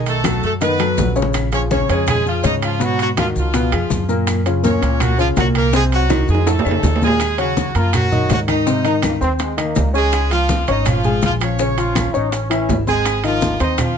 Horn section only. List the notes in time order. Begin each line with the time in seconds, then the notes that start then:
0.08 A3 A4
0.44 A3 A4
0.62 B3 B4
1.54 C#4 C#5
1.72 C#4 C#5
1.90 G#3 G#4
2.09 G#3 G#4
2.27 F3 F4
2.46 D#4 D#5
2.64 F3 F4
2.83 F#3 F#4
3.01 F#3 F#4
3.19 F3 F4
3.38 F3 F4
4.64 C#4 C#5
5.01 F#3 F#4
5.19 F3 F4
5.38 F#3 F#4
5.57 A#3 A#4
5.74 G#3 G#4
5.94 F#3 F#4
6.30 G#3 G#4
6.49 A3 A4
7.03 G#3 G#4
7.39 F#3 F#4
7.76 F3 F4
7.94 F#3 F#4
8.31 F#3 F#4
8.49 D#4 D#5
9.96 G#3 G#4
10.32 F3 F4
10.70 D#4 D#5
10.87 F3 F4
11.25 F3 F4
11.42 C#4 C#5
12.88 G#3 G#4
13.26 F3 F4
13.62 D#4 D#5
13.80 F3 F4